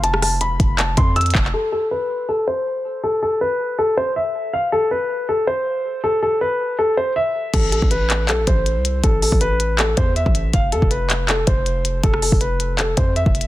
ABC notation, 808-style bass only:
X:1
M:4/4
L:1/16
Q:1/4=160
K:Am
V:1 name="808-style bass" clef=bass
F,,,4 E,,, F,,, F,,,4 F,,4 F,,,2 | z16 | z16 | z16 |
z16 | A,,,3 A,,,4- A,,, B,,, A,,, A,,,3 C,,3 | A,,,3 A,,,6- A,,, E,,3 A,,,3 | F,,,2 F,, F,,,6- F,,, F,,,6 |
F,,,3 F,,,6- F,,, F,,3 F,,,3 |]